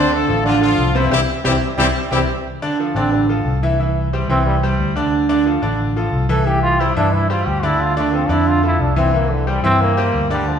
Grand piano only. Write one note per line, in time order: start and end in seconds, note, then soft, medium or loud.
0.00 0.22 D3 loud
0.00 0.22 D4 loud
0.00 0.23 D5 loud
0.29 0.42 F3 medium
0.29 0.42 F4 medium
0.29 0.43 A4 medium
0.45 0.59 D3 medium
0.45 0.59 D4 medium
0.45 0.59 D5 medium
0.61 0.89 F3 medium
0.61 0.89 F4 medium
0.61 0.89 A4 medium
0.95 1.08 C3 medium
0.95 1.09 C4 medium
0.95 1.09 C5 medium
1.11 1.22 C4 medium
1.11 1.22 E4 medium
1.11 1.22 G4 medium
1.45 1.55 C4 loud
1.45 1.56 E4 loud
1.45 1.56 G4 loud
1.78 1.89 C4 medium
1.78 1.89 E4 medium
1.78 1.89 G4 medium
2.12 2.23 C4 loud
2.12 2.23 E4 loud
2.12 2.23 G4 loud
2.62 2.76 D3 medium
2.62 2.76 D4 loud
2.62 2.76 D5 loud
2.80 2.93 F3 medium
2.80 2.93 F4 medium
2.80 2.93 A4 medium
2.96 3.23 D3 medium
2.96 3.23 D4 medium
2.96 3.23 D5 medium
3.29 3.56 F3 medium
3.29 3.56 F4 medium
3.29 3.56 A4 medium
3.63 3.76 E3 medium
3.63 3.76 E4 medium
3.63 3.76 E5 medium
3.79 4.06 E3 medium
3.79 4.07 E4 medium
3.79 4.07 E5 medium
4.13 4.26 G3 medium
4.13 4.26 G4 medium
4.13 4.27 C5 medium
4.30 4.57 E3 medium
4.30 4.57 E4 medium
4.30 4.57 E5 medium
4.63 4.90 G3 medium
4.63 4.90 G4 medium
4.63 4.90 C5 medium
4.96 5.23 D3 medium
4.96 5.23 D4 medium
4.96 5.23 D5 medium
5.29 5.43 D3 loud
5.29 5.43 D4 loud
5.29 5.43 D5 loud
5.46 5.59 F3 medium
5.46 5.60 F4 medium
5.46 5.60 A4 medium
5.62 5.89 D3 medium
5.62 5.90 D4 medium
5.62 5.90 D5 medium
5.96 6.23 F3 medium
5.96 6.24 F4 medium
5.96 6.24 A4 medium
6.29 6.43 E3 loud
6.29 6.43 E4 loud
6.29 6.43 E5 medium
6.46 6.73 E3 medium
6.46 6.74 E4 medium
6.46 6.74 E5 medium
6.80 6.93 G3 medium
6.80 6.94 G4 medium
6.80 6.94 C5 medium
6.97 7.24 E3 medium
6.97 7.24 E4 medium
6.97 7.24 E5 medium
7.30 7.57 G3 medium
7.30 7.57 G4 medium
7.30 7.57 C5 medium
7.63 7.90 D3 medium
7.63 7.90 D4 medium
7.63 7.91 D5 medium
7.97 8.10 D3 medium
7.97 8.10 D4 medium
7.97 8.10 D5 medium
8.13 8.27 F3 medium
8.13 8.27 F4 medium
8.13 8.27 A4 medium
8.29 8.57 D3 medium
8.29 8.57 D4 medium
8.29 8.57 D5 medium
8.63 8.90 F3 medium
8.63 8.90 F4 medium
8.63 8.90 A4 medium
8.96 9.10 E3 loud
8.96 9.10 E4 medium
8.96 9.11 E5 medium
9.14 9.41 E3 medium
9.14 9.41 E4 medium
9.14 9.41 E5 medium
9.47 9.61 G3 medium
9.47 9.61 G4 medium
9.47 9.61 C5 medium
9.64 9.91 E3 medium
9.64 9.91 E4 medium
9.64 9.91 E5 loud
9.97 10.25 G3 medium
9.97 10.24 G4 medium
9.97 10.25 C5 medium
10.30 10.58 D3 loud
10.30 10.58 D4 medium
10.30 10.58 D5 medium